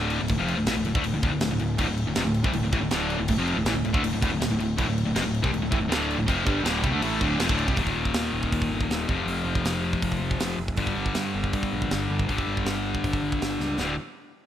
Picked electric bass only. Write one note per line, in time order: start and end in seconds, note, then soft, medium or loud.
0.00 0.18 D1 medium
0.22 0.29 D1 medium
0.30 0.38 D1 medium
0.40 0.57 F1 loud
0.57 0.66 D1 medium
0.67 0.76 A1 loud
0.77 0.85 D1 medium
0.87 0.94 D1 medium
0.95 1.04 D2 medium
1.05 1.13 D1 medium
1.14 1.22 D1 medium
1.23 1.32 D1 loud
1.32 1.40 D1 medium
1.41 1.50 D1 medium
1.51 1.59 D1 medium
1.60 1.78 D1 medium
1.79 1.87 D1 medium
1.88 2.06 D1 medium
2.07 2.15 D1 medium
2.16 2.24 F1 loud
2.25 2.43 D1 medium
2.44 2.52 C2 medium
2.53 2.62 D1 medium
2.63 2.72 D1 medium
2.72 2.80 A1 loud
2.81 2.90 D1 medium
2.91 3.17 D1 medium
3.18 3.27 D1 medium
3.29 3.37 D1 loud
3.37 3.55 F1 loud
3.56 3.64 D1 medium
3.65 3.74 A1 loud
3.74 3.83 D1 medium
3.84 3.93 D1 medium
3.94 4.02 D2 loud
4.03 4.12 D1 medium
4.12 4.21 D1 loud
4.22 4.31 D1 medium
4.32 4.40 D1 medium
4.42 4.49 D1 medium
4.50 4.58 D1 medium
4.59 4.76 D1 medium
4.78 4.87 D1 loud
4.88 5.05 D1 medium
5.06 5.14 D1 medium
5.15 5.23 F1 loud
5.24 5.41 D1 medium
5.44 5.51 C2 loud
5.51 5.60 D1 medium
5.61 5.70 D1 medium
5.72 5.78 A1 loud
5.79 5.88 D1 medium
5.88 6.15 D1 loud
6.18 6.27 D1 medium
6.28 6.45 F1 loud
6.47 6.63 G1 medium
6.64 6.81 D1 loud
6.84 6.91 C2 loud
6.91 7.00 D2 loud
7.01 7.19 A1 loud
7.21 7.38 D1 medium
7.38 7.47 F1 loud
7.49 7.66 D1 loud
7.68 7.79 C2 loud
7.77 7.92 D#1 loud
7.96 8.11 D#1 medium
8.14 8.29 D#2 medium
8.33 8.48 D#1 medium
8.52 8.67 D#2 loud
8.69 8.85 G1 medium
8.89 9.04 D#1 medium
9.09 9.24 F1 medium
9.26 9.42 F1 loud
9.45 9.60 F1 medium
9.64 9.95 F1 medium
10.03 10.18 F1 medium
10.20 10.36 F1 medium
10.39 10.54 F1 medium
10.58 10.78 F1 medium
10.78 10.93 G1 loud
10.96 11.11 G1 medium
11.16 11.31 G2 medium
11.35 11.49 G1 medium
11.53 11.68 G2 medium
11.73 11.88 A#1 medium
11.91 12.06 G1 medium
12.10 12.25 G1 medium
12.29 12.44 G1 medium
12.47 12.62 G1 medium
12.65 12.96 G1 medium
13.04 13.19 G1 medium
13.22 13.37 G1 medium
13.41 13.56 G1 medium
13.59 13.75 C#2 medium
13.78 13.96 D1 medium